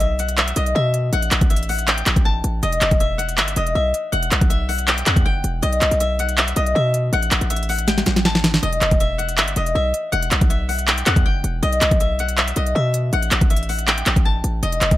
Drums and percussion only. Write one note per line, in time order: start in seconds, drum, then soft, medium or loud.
0.00 closed hi-hat medium
0.19 closed hi-hat medium
0.29 closed hi-hat medium
0.38 clap loud
0.38 closed hi-hat medium
0.48 closed hi-hat medium
0.56 closed hi-hat medium
0.66 closed hi-hat medium
0.94 closed hi-hat medium
1.13 closed hi-hat medium
1.22 closed hi-hat medium
1.31 clap loud
1.31 closed hi-hat medium
1.41 kick loud
1.41 closed hi-hat medium
1.50 closed hi-hat medium
1.56 closed hi-hat medium
1.63 closed hi-hat soft
1.69 open hi-hat medium
1.79 closed hi-hat medium
1.88 clap loud
1.88 closed hi-hat medium
1.98 closed hi-hat medium
2.06 clap loud
2.06 closed hi-hat medium
2.16 kick medium
2.16 closed hi-hat medium
2.44 closed hi-hat medium
2.63 closed hi-hat medium
2.73 closed hi-hat medium
2.81 clap loud
2.81 closed hi-hat medium
2.91 kick medium
2.91 closed hi-hat medium
3.00 closed hi-hat medium
3.19 closed hi-hat medium
3.29 closed hi-hat medium
3.38 clap loud
3.38 closed hi-hat medium
3.48 closed hi-hat medium
3.56 closed hi-hat medium
3.67 closed hi-hat medium
3.94 closed hi-hat medium
4.13 closed hi-hat medium
4.23 closed hi-hat medium
4.31 clap loud
4.31 closed hi-hat medium
4.41 kick medium
4.41 closed hi-hat medium
4.50 closed hi-hat medium
4.69 open hi-hat medium
4.79 closed hi-hat medium
4.88 clap loud
4.88 closed hi-hat medium
4.98 closed hi-hat medium
5.06 clap loud
5.06 closed hi-hat medium
5.16 kick medium
5.16 closed hi-hat medium
5.44 closed hi-hat medium
5.63 closed hi-hat medium
5.73 closed hi-hat medium
5.81 clap loud
5.81 closed hi-hat medium
5.91 closed hi-hat medium
6.00 closed hi-hat medium
6.19 closed hi-hat medium
6.29 closed hi-hat medium
6.38 clap loud
6.38 closed hi-hat medium
6.48 closed hi-hat medium
6.56 closed hi-hat medium
6.66 closed hi-hat medium
6.94 closed hi-hat medium
7.13 closed hi-hat medium
7.22 closed hi-hat medium
7.31 clap loud
7.31 closed hi-hat medium
7.41 closed hi-hat medium
7.50 closed hi-hat medium
7.56 closed hi-hat medium
7.63 closed hi-hat soft
7.69 open hi-hat medium
7.79 closed hi-hat medium
7.88 snare medium
7.88 closed hi-hat medium
7.98 snare medium
7.98 closed hi-hat medium
8.06 snare medium
8.06 closed hi-hat medium
8.16 snare medium
8.16 closed hi-hat medium
8.25 snare loud
8.35 snare medium
8.44 snare loud
8.44 closed hi-hat medium
8.54 snare loud
8.63 closed hi-hat medium
8.73 closed hi-hat medium
8.81 clap loud
8.81 closed hi-hat medium
8.91 kick medium
8.91 closed hi-hat medium
9.00 closed hi-hat medium
9.19 closed hi-hat medium
9.29 closed hi-hat medium
9.38 clap loud
9.38 closed hi-hat medium
9.48 closed hi-hat medium
9.56 closed hi-hat medium
9.66 closed hi-hat medium
9.94 closed hi-hat medium
10.13 closed hi-hat medium
10.23 closed hi-hat medium
10.31 clap loud
10.31 closed hi-hat medium
10.41 kick medium
10.41 closed hi-hat medium
10.50 closed hi-hat medium
10.69 open hi-hat medium
10.79 closed hi-hat medium
10.88 clap loud
10.88 closed hi-hat medium
10.98 closed hi-hat medium
11.06 clap loud
11.06 closed hi-hat medium
11.16 kick medium
11.16 closed hi-hat medium
11.44 closed hi-hat medium
11.63 closed hi-hat medium
11.73 closed hi-hat medium
11.81 clap loud
11.81 closed hi-hat medium
11.91 kick medium
11.91 closed hi-hat medium
12.00 closed hi-hat medium
12.19 closed hi-hat medium
12.29 closed hi-hat medium
12.38 clap loud
12.38 closed hi-hat medium
12.48 closed hi-hat medium
12.56 closed hi-hat medium
12.66 closed hi-hat medium
12.94 closed hi-hat medium
13.13 closed hi-hat medium
13.22 closed hi-hat medium
13.31 clap loud
13.31 closed hi-hat medium
13.41 kick loud
13.41 closed hi-hat medium
13.50 closed hi-hat medium
13.56 closed hi-hat medium
13.63 closed hi-hat soft
13.69 open hi-hat medium
13.79 closed hi-hat medium
13.88 clap loud
13.88 closed hi-hat medium
13.98 closed hi-hat medium
14.06 clap loud
14.06 closed hi-hat medium
14.16 kick medium
14.16 closed hi-hat medium
14.44 closed hi-hat medium
14.63 closed hi-hat medium
14.72 closed hi-hat medium
14.81 clap loud
14.81 closed hi-hat medium
14.91 kick loud
14.91 closed hi-hat medium